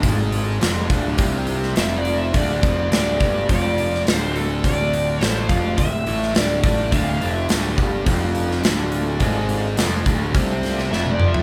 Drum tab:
HH |o-o-o-o-o-o-o-o-|o-o-o-o-o-o-o-o-|o-o-o-o-o-o-o-o-|o-o-o-o-o-o-o-o-|
SD |----o------oo---|----o------oo---|----o------oo---|----o------oo---|
T1 |----------------|----------------|----------------|----------------|
T2 |----------------|----------------|----------------|----------------|
FT |----------------|----------------|----------------|----------------|
BD |o-----o-o-------|o-o---o-o-------|o-----o-o-----o-|o-----o-o-------|

HH |o-o-o-o-o-o-----|
SD |----o-----ooo---|
T1 |-------------o--|
T2 |--------------o-|
FT |---------------o|
BD |o-----o-o-------|